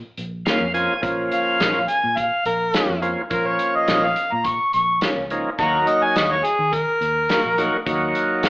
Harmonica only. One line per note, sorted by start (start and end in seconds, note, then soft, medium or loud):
1.33 1.91 F5 medium
1.89 2.19 G#5 medium
2.17 2.45 F5 medium
2.46 3.01 A#4 medium
3.32 3.49 A#4 medium
3.47 3.77 C#5 medium
3.75 4.06 D#5 medium
4.04 4.35 F5 medium
4.33 4.47 A#5 medium
4.46 4.73 C#6 medium
4.74 5.01 C#6 medium
5.59 5.89 A#5 loud
5.88 6.05 D#5 medium
6.03 6.18 G#5 medium
6.17 6.33 D#5 medium
6.31 6.47 C#5 medium
6.45 6.75 G#4 medium
6.73 7.83 A#4 medium